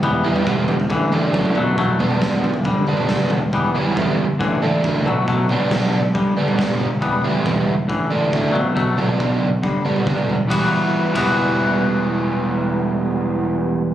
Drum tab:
RD |----------------|----------------|----------------|----------------|
SD |----------------|----o-------o---|----------------|----o-------o---|
T2 |--------------o-|--o--------o-oo-|--------------o-|--o--------o-oo-|
FT |o--o--ooo-o--oo-|o-oo-oooo-----o-|----------------|----------------|
BD |o---o---o---o---|o---o---o---o---|o---o---o---o---|o---o---o---o---|

RD |----------------|----------------|x-----x---------|----------------|
SD |----------------|----------------|----------------|----------------|
T2 |--------------o-|--o--------o-oo-|----------------|----------------|
FT |----------------|----------------|----------------|----------------|
BD |o---o---o---o---|o---o---o---o---|o-----o---------|----------------|